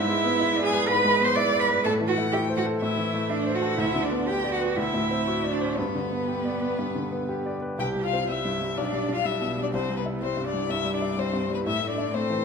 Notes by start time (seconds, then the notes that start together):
Already playing: G#2 E4 E5
0.09 G#3
0.25 B3
0.41 E4
0.56 D5
0.63 G#4 G#5
0.72 B4
0.88 G#2 B4 B5
1.05 G#3
1.21 B3 C5 C6
1.35 E4 D5 D6
1.53 D5
1.60 B4 B5
1.68 B4
1.84 A2 A4 A5
2.01 E3
2.08 F#4 F#5
2.18 A3
2.32 E4 G4 G5
2.49 C5
2.57 F#4 F#5
2.66 A4
2.81 A2 E4 E5
2.97 E3
3.14 A3
3.30 D4 E4 D5
3.47 C5
3.55 F#4 F#5
3.62 A4
3.78 D2 E4 E5
3.95 D3
4.03 D4 D5
4.11 B3
4.27 G4 G5
4.44 D5
4.52 F#4 F#5
4.61 B4
4.76 D2 E4 E5
4.94 A2
5.11 C4
5.27 F#4
5.44 D5
5.51 D4 D5
5.61 C5
5.77 G2 B3 B4
5.95 D3
6.12 B3
6.28 G4
6.45 D5
6.61 B4
6.79 G2
6.95 D3
7.12 B3
7.29 G4
7.46 D5
7.62 B4
7.78 C2 G4 G5
7.96 G3
8.04 F4 F5
8.13 C4
8.28 G3 E4 E5
8.45 G2
8.62 G3
8.77 B1 D4 D5
8.93 G3
9.09 D4
9.13 F4 F5
9.24 G3 E4 E5
9.41 B2
9.58 G3 D4
9.63 D5
9.73 C2 C4 C5
9.90 G3
9.97 B3 B4
10.05 E4
10.20 G3 C4 C5
10.37 G2
10.45 D4 D5
10.54 G3
10.70 G2 E4 E5
10.85 G3
10.94 D4 D5
11.02 E4
11.17 G3 C4 C5
11.33 G2
11.50 G3
11.54 B3 B4
11.65 A2 E4 E5
11.83 A3
11.90 D4 D5
11.98 E4
12.14 A3 C4 C5
12.30 E3